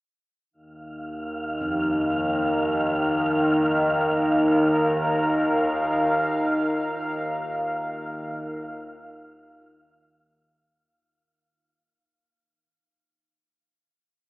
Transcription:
0.51 D#2 D#3 D#4 F5
1.61 F2
2.00 A#4
4.41 F5
9.62 F4

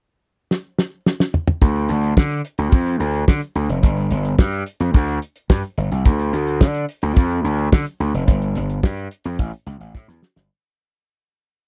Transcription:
0.51 snare
0.79 snare
1.06 snare
1.20 snare
1.34 mid tom
1.48 mid tom
1.62 D2, kick, closed hi-hat
1.76 closed hi-hat
1.89 D2, closed hi-hat
2.03 closed hi-hat
2.17 D3, kick, snare
2.31 closed hi-hat
2.45 closed hi-hat
2.58 D2, closed hi-hat
2.72 F2, kick, closed hi-hat
2.86 closed hi-hat
3.00 D2, closed hi-hat
3.14 closed hi-hat
3.28 D3, kick, snare
3.41 closed hi-hat
3.55 D2, closed hi-hat
3.69 F1, closed hi-hat
3.83 G1, kick, closed hi-hat
3.97 closed hi-hat
4.11 G1, closed hi-hat
4.25 closed hi-hat
4.39 G2, kick, snare
4.52 closed hi-hat
4.66 closed hi-hat
4.80 F2, closed hi-hat
4.94 D2, kick, closed hi-hat
5.09 closed hi-hat
5.22 closed hi-hat
5.36 closed hi-hat
5.50 G2, kick, snare
5.63 closed hi-hat
5.77 G1, closed hi-hat
5.91 C2, closed hi-hat
6.05 D2, kick, closed hi-hat
6.20 closed hi-hat
6.33 D2, closed hi-hat
6.47 closed hi-hat
6.61 D3, kick, snare
6.74 closed hi-hat
6.89 closed hi-hat
7.02 D2, closed hi-hat
7.16 F2, kick, closed hi-hat
7.31 closed hi-hat
7.44 D2, closed hi-hat
7.59 closed hi-hat
7.72 D3, kick, snare
7.86 closed hi-hat
8.00 D2, closed hi-hat
8.14 F1, closed hi-hat
8.28 G1, kick, closed hi-hat
8.42 closed hi-hat
8.55 G1, closed hi-hat
8.70 closed hi-hat
8.83 G2, kick, snare
8.97 closed hi-hat
9.11 closed hi-hat
9.24 F2, closed hi-hat
9.39 A1, kick, closed hi-hat
9.53 closed hi-hat
9.66 C#2, closed hi-hat
9.80 A1, closed hi-hat
9.95 A2, kick, snare
10.08 E2, snare
10.22 snare
10.36 G1, snare

